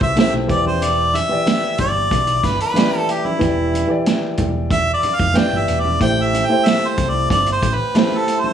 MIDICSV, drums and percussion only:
0, 0, Header, 1, 2, 480
1, 0, Start_track
1, 0, Tempo, 648649
1, 606, Time_signature, 4, 2, 24, 8
1, 6313, End_track
2, 0, Start_track
2, 0, Title_t, "Drums"
2, 7, Note_on_c, 9, 36, 89
2, 81, Note_off_c, 9, 36, 0
2, 119, Note_on_c, 9, 63, 83
2, 123, Note_on_c, 9, 42, 65
2, 137, Note_on_c, 9, 38, 102
2, 193, Note_off_c, 9, 63, 0
2, 197, Note_off_c, 9, 42, 0
2, 211, Note_off_c, 9, 38, 0
2, 366, Note_on_c, 9, 36, 99
2, 366, Note_on_c, 9, 42, 65
2, 440, Note_off_c, 9, 36, 0
2, 440, Note_off_c, 9, 42, 0
2, 483, Note_on_c, 9, 63, 65
2, 557, Note_off_c, 9, 63, 0
2, 603, Note_on_c, 9, 62, 30
2, 606, Note_on_c, 9, 42, 82
2, 677, Note_off_c, 9, 62, 0
2, 680, Note_off_c, 9, 42, 0
2, 841, Note_on_c, 9, 62, 51
2, 853, Note_on_c, 9, 42, 71
2, 915, Note_off_c, 9, 62, 0
2, 927, Note_off_c, 9, 42, 0
2, 1085, Note_on_c, 9, 63, 64
2, 1087, Note_on_c, 9, 42, 83
2, 1092, Note_on_c, 9, 38, 99
2, 1159, Note_off_c, 9, 63, 0
2, 1161, Note_off_c, 9, 42, 0
2, 1166, Note_off_c, 9, 38, 0
2, 1318, Note_on_c, 9, 42, 70
2, 1323, Note_on_c, 9, 36, 87
2, 1392, Note_off_c, 9, 42, 0
2, 1397, Note_off_c, 9, 36, 0
2, 1563, Note_on_c, 9, 62, 45
2, 1564, Note_on_c, 9, 36, 88
2, 1571, Note_on_c, 9, 42, 77
2, 1637, Note_off_c, 9, 62, 0
2, 1638, Note_off_c, 9, 36, 0
2, 1645, Note_off_c, 9, 42, 0
2, 1680, Note_on_c, 9, 42, 52
2, 1754, Note_off_c, 9, 42, 0
2, 1802, Note_on_c, 9, 36, 73
2, 1803, Note_on_c, 9, 62, 48
2, 1805, Note_on_c, 9, 42, 64
2, 1813, Note_on_c, 9, 38, 32
2, 1876, Note_off_c, 9, 36, 0
2, 1877, Note_off_c, 9, 62, 0
2, 1879, Note_off_c, 9, 42, 0
2, 1887, Note_off_c, 9, 38, 0
2, 1926, Note_on_c, 9, 42, 53
2, 2000, Note_off_c, 9, 42, 0
2, 2038, Note_on_c, 9, 63, 76
2, 2043, Note_on_c, 9, 42, 66
2, 2058, Note_on_c, 9, 38, 105
2, 2112, Note_off_c, 9, 63, 0
2, 2117, Note_off_c, 9, 42, 0
2, 2132, Note_off_c, 9, 38, 0
2, 2284, Note_on_c, 9, 42, 71
2, 2358, Note_off_c, 9, 42, 0
2, 2404, Note_on_c, 9, 63, 67
2, 2478, Note_off_c, 9, 63, 0
2, 2525, Note_on_c, 9, 36, 107
2, 2525, Note_on_c, 9, 42, 81
2, 2525, Note_on_c, 9, 62, 31
2, 2599, Note_off_c, 9, 36, 0
2, 2599, Note_off_c, 9, 42, 0
2, 2599, Note_off_c, 9, 62, 0
2, 2765, Note_on_c, 9, 62, 45
2, 2774, Note_on_c, 9, 42, 68
2, 2839, Note_off_c, 9, 62, 0
2, 2848, Note_off_c, 9, 42, 0
2, 3006, Note_on_c, 9, 42, 86
2, 3011, Note_on_c, 9, 38, 100
2, 3011, Note_on_c, 9, 63, 63
2, 3080, Note_off_c, 9, 42, 0
2, 3085, Note_off_c, 9, 38, 0
2, 3085, Note_off_c, 9, 63, 0
2, 3237, Note_on_c, 9, 42, 67
2, 3243, Note_on_c, 9, 36, 84
2, 3250, Note_on_c, 9, 64, 62
2, 3311, Note_off_c, 9, 42, 0
2, 3317, Note_off_c, 9, 36, 0
2, 3324, Note_off_c, 9, 64, 0
2, 3482, Note_on_c, 9, 36, 92
2, 3485, Note_on_c, 9, 42, 71
2, 3490, Note_on_c, 9, 62, 50
2, 3556, Note_off_c, 9, 36, 0
2, 3559, Note_off_c, 9, 42, 0
2, 3564, Note_off_c, 9, 62, 0
2, 3722, Note_on_c, 9, 42, 61
2, 3732, Note_on_c, 9, 62, 43
2, 3796, Note_off_c, 9, 42, 0
2, 3806, Note_off_c, 9, 62, 0
2, 3845, Note_on_c, 9, 36, 90
2, 3919, Note_off_c, 9, 36, 0
2, 3960, Note_on_c, 9, 42, 71
2, 3966, Note_on_c, 9, 63, 78
2, 3974, Note_on_c, 9, 38, 107
2, 4034, Note_off_c, 9, 42, 0
2, 4040, Note_off_c, 9, 63, 0
2, 4048, Note_off_c, 9, 38, 0
2, 4203, Note_on_c, 9, 42, 73
2, 4277, Note_off_c, 9, 42, 0
2, 4328, Note_on_c, 9, 63, 73
2, 4402, Note_off_c, 9, 63, 0
2, 4445, Note_on_c, 9, 36, 97
2, 4445, Note_on_c, 9, 42, 81
2, 4519, Note_off_c, 9, 36, 0
2, 4519, Note_off_c, 9, 42, 0
2, 4686, Note_on_c, 9, 62, 50
2, 4694, Note_on_c, 9, 42, 67
2, 4760, Note_off_c, 9, 62, 0
2, 4768, Note_off_c, 9, 42, 0
2, 4927, Note_on_c, 9, 42, 86
2, 4929, Note_on_c, 9, 63, 61
2, 4933, Note_on_c, 9, 38, 107
2, 5001, Note_off_c, 9, 42, 0
2, 5003, Note_off_c, 9, 63, 0
2, 5007, Note_off_c, 9, 38, 0
2, 5161, Note_on_c, 9, 42, 66
2, 5164, Note_on_c, 9, 36, 82
2, 5235, Note_off_c, 9, 42, 0
2, 5238, Note_off_c, 9, 36, 0
2, 5405, Note_on_c, 9, 36, 88
2, 5409, Note_on_c, 9, 62, 51
2, 5411, Note_on_c, 9, 42, 68
2, 5479, Note_off_c, 9, 36, 0
2, 5483, Note_off_c, 9, 62, 0
2, 5485, Note_off_c, 9, 42, 0
2, 5523, Note_on_c, 9, 42, 49
2, 5597, Note_off_c, 9, 42, 0
2, 5643, Note_on_c, 9, 36, 82
2, 5645, Note_on_c, 9, 42, 68
2, 5650, Note_on_c, 9, 62, 47
2, 5717, Note_off_c, 9, 36, 0
2, 5719, Note_off_c, 9, 42, 0
2, 5724, Note_off_c, 9, 62, 0
2, 5882, Note_on_c, 9, 42, 64
2, 5884, Note_on_c, 9, 63, 85
2, 5896, Note_on_c, 9, 38, 111
2, 5956, Note_off_c, 9, 42, 0
2, 5958, Note_off_c, 9, 63, 0
2, 5970, Note_off_c, 9, 38, 0
2, 6125, Note_on_c, 9, 42, 74
2, 6199, Note_off_c, 9, 42, 0
2, 6246, Note_on_c, 9, 63, 65
2, 6313, Note_off_c, 9, 63, 0
2, 6313, End_track
0, 0, End_of_file